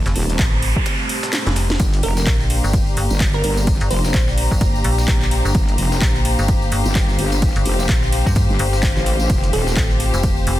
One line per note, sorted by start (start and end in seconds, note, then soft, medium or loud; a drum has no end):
0.00 1.76 A3 medium
0.00 1.76 C4 medium
0.00 9.26 G4 medium
0.00 1.76 C5 loud
0.00 1.80 A5 medium
0.00 noise sweep medium
0.06 0.14 F1 loud
0.06 snare loud
0.06 shaker medium
0.15 0.38 D#1 loud
0.15 snare soft
0.15 open hi-hat loud
0.29 shaker medium
0.39 0.74 A1 medium
0.39 kick loud
0.39 snare loud
0.39 clap loud
0.39 ride medium
0.39 shaker medium
0.53 snare soft
0.62 open hi-hat loud
0.62 shaker medium
0.76 kick medium
0.86 snare loud
0.86 ride medium
0.86 shaker medium
1.09 open hi-hat loud
1.09 shaker medium
1.23 snare loud
1.23 shaker medium
1.33 snare medium
1.33 snare loud
1.33 clap loud
1.33 open hi-hat medium
1.33 ride medium
1.33 shaker medium
1.47 1.78 F1 medium
1.47 snare medium
1.47 shaker medium
1.56 snare loud
1.56 open hi-hat loud
1.56 shaker medium
1.70 snare medium
1.70 shaker medium
1.80 2.02 G1 loud
1.80 9.26 A#3 medium
1.80 9.26 D4 medium
1.80 10.60 G4 loud
1.80 5.51 D5 medium
1.80 kick loud
1.80 ride medium
1.80 tambourine medium
1.80 shaker loud
1.94 closed hi-hat soft
1.94 tambourine soft
2.03 2.25 F1 loud
2.03 2.40 A#4 medium
2.03 10.60 F5 medium
2.03 open hi-hat loud
2.03 shaker medium
2.17 snare medium
2.17 tambourine medium
2.23 2.62 A#1 loud
2.23 10.60 C5 medium
2.23 kick loud
2.23 snare loud
2.23 clap loud
2.23 ride medium
2.23 tambourine medium
2.23 shaker medium
2.40 snare soft
2.40 tambourine soft
2.50 9.30 A#5 medium
2.50 open hi-hat loud
2.50 shaker medium
2.64 2.95 G1 medium
2.64 tambourine medium
2.73 kick loud
2.73 ride medium
2.73 tambourine medium
2.73 shaker medium
2.87 tambourine soft
2.97 3.09 G1 medium
2.97 open hi-hat loud
2.97 shaker medium
3.10 3.42 G1 medium
3.10 tambourine medium
3.20 kick loud
3.20 snare loud
3.20 clap loud
3.20 open hi-hat medium
3.20 ride medium
3.20 tambourine medium
3.20 shaker medium
3.34 3.40 A#4 medium
3.34 tambourine soft
3.44 3.79 G1 loud
3.44 3.53 A#4 medium
3.44 open hi-hat loud
3.44 shaker medium
3.57 tambourine medium
3.67 kick loud
3.67 ride medium
3.67 tambourine medium
3.67 shaker medium
3.80 3.89 G1 loud
3.80 closed hi-hat soft
3.80 tambourine soft
3.91 4.13 F1 loud
3.91 4.28 C5 medium
3.91 open hi-hat loud
3.91 shaker medium
4.04 snare soft
4.04 tambourine medium
4.14 4.49 A#1 loud
4.14 kick loud
4.14 snare loud
4.14 clap loud
4.14 ride medium
4.14 tambourine medium
4.14 shaker medium
4.28 snare medium
4.28 tambourine soft
4.38 open hi-hat loud
4.38 shaker medium
4.51 4.83 G1 medium
4.51 kick medium
4.51 tambourine medium
4.61 kick loud
4.61 ride medium
4.61 tambourine medium
4.61 shaker medium
4.75 tambourine soft
4.84 5.06 A#1 medium
4.84 open hi-hat loud
4.84 shaker medium
4.98 snare medium
4.98 tambourine medium
5.08 5.43 A#1 loud
5.08 kick loud
5.08 snare loud
5.08 clap loud
5.08 open hi-hat medium
5.08 ride medium
5.08 shaker loud
5.21 clap soft
5.21 tambourine soft
5.31 open hi-hat loud
5.31 shaker medium
5.45 5.53 G1 loud
5.45 tambourine medium
5.55 5.77 G1 loud
5.55 10.60 C5 loud
5.55 kick loud
5.55 ride medium
5.55 shaker medium
5.69 closed hi-hat soft
5.69 tambourine soft
5.78 6.00 F1 loud
5.78 open hi-hat loud
5.78 shaker medium
5.92 snare medium
5.92 tambourine medium
6.02 6.37 A#1 loud
6.02 kick loud
6.02 snare loud
6.02 clap loud
6.02 ride medium
6.02 tambourine medium
6.02 shaker medium
6.15 snare soft
6.15 tambourine soft
6.25 open hi-hat loud
6.25 shaker medium
6.39 6.70 G1 loud
6.39 tambourine medium
6.48 kick loud
6.48 ride medium
6.48 tambourine medium
6.48 shaker medium
6.62 tambourine soft
6.72 6.83 G1 loud
6.72 open hi-hat loud
6.72 shaker medium
6.85 7.17 G1 loud
6.85 tambourine medium
6.95 kick loud
6.95 snare loud
6.95 clap loud
6.95 open hi-hat medium
6.95 ride medium
6.95 tambourine medium
6.95 shaker medium
7.09 tambourine soft
7.19 7.54 G1 loud
7.19 open hi-hat loud
7.19 shaker medium
7.32 tambourine medium
7.42 kick loud
7.42 ride medium
7.42 tambourine medium
7.42 shaker medium
7.56 7.64 G1 loud
7.56 closed hi-hat soft
7.56 tambourine soft
7.66 7.88 F1 loud
7.66 open hi-hat loud
7.66 shaker medium
7.79 snare soft
7.79 tambourine medium
7.89 8.24 A#1 loud
7.89 kick loud
7.89 snare loud
7.89 clap loud
7.89 ride medium
7.89 tambourine medium
7.89 shaker medium
8.03 snare medium
8.03 tambourine soft
8.12 open hi-hat loud
8.12 shaker medium
8.26 8.48 G2 medium
8.26 kick medium
8.26 tambourine medium
8.35 kick loud
8.35 ride medium
8.35 tambourine medium
8.35 shaker medium
8.50 8.58 G1 medium
8.50 tambourine soft
8.59 8.95 G1 loud
8.59 open hi-hat loud
8.59 shaker medium
8.73 snare medium
8.73 tambourine medium
8.82 kick loud
8.82 snare loud
8.82 clap loud
8.82 open hi-hat medium
8.82 ride medium
8.82 tambourine medium
8.82 shaker medium
8.97 9.28 A1 loud
8.97 clap soft
8.97 tambourine soft
9.06 open hi-hat loud
9.06 shaker medium
9.20 tambourine medium
9.30 9.52 F1 loud
9.30 10.60 A3 medium
9.30 10.60 C4 medium
9.30 10.60 F4 medium
9.30 kick loud
9.30 ride medium
9.30 tambourine medium
9.30 shaker medium
9.44 closed hi-hat soft
9.44 tambourine soft
9.53 9.75 D#1 medium
9.53 9.90 A4 medium
9.53 open hi-hat loud
9.53 shaker medium
9.67 snare medium
9.67 tambourine medium
9.77 10.12 A1 loud
9.77 kick loud
9.77 snare loud
9.77 clap loud
9.77 ride medium
9.77 shaker medium
9.90 10.60 A5 medium
9.90 snare soft
9.90 tambourine soft
10.00 open hi-hat loud
10.00 shaker medium
10.14 10.45 F1 loud
10.14 tambourine medium
10.23 kick loud
10.23 ride medium
10.23 tambourine medium
10.23 shaker medium
10.37 tambourine soft
10.47 10.59 F1 loud
10.47 open hi-hat loud
10.47 shaker medium